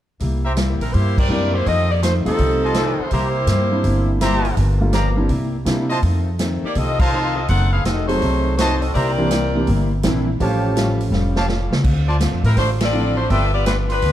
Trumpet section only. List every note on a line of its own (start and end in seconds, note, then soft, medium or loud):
0.44 0.53 G4 medium
0.44 0.53 C5 medium
0.44 0.53 E5 medium
0.44 0.53 A#5 medium
2.63 3.09 F4 medium
2.63 3.10 C5 medium
2.63 3.09 D#5 medium
2.63 3.09 A5 medium
3.11 3.28 G4 medium
3.11 3.28 C5 medium
3.11 3.28 E5 medium
3.11 3.28 A#5 medium
4.21 4.58 G4 medium
4.21 4.58 C5 medium
4.21 4.57 E5 medium
4.21 4.57 A#5 loud
4.93 5.09 G4 medium
4.93 5.09 D5 medium
4.93 5.09 F5 medium
4.93 5.09 A#5 medium
5.89 5.98 F4 medium
5.89 5.98 C5 medium
5.89 5.98 D#5 medium
5.89 5.98 A5 medium
7.00 7.46 F4 medium
7.00 7.46 C5 medium
7.00 7.46 D#5 medium
7.00 7.46 A5 loud
8.59 8.74 F#4 medium
8.59 8.74 C5 medium
8.59 8.74 D#5 medium
8.59 8.75 A5 loud
8.95 9.11 G4 medium
8.95 9.10 C5 medium
8.95 9.10 E5 medium
8.95 9.11 A#5 medium
10.39 10.95 G4 medium
10.39 10.95 C#5 medium
10.39 10.95 F5 medium
10.39 10.95 A5 medium
11.36 11.45 G4 medium
11.36 11.44 C#5 medium
11.36 11.45 F5 medium
11.36 11.45 A5 medium
12.07 12.16 F4 medium
12.07 12.16 C5 medium
12.07 12.16 D5 medium
12.07 12.16 A5 medium
13.30 13.46 F4 medium
13.30 13.47 B4 medium
13.30 13.46 D5 medium
13.30 13.46 G5 medium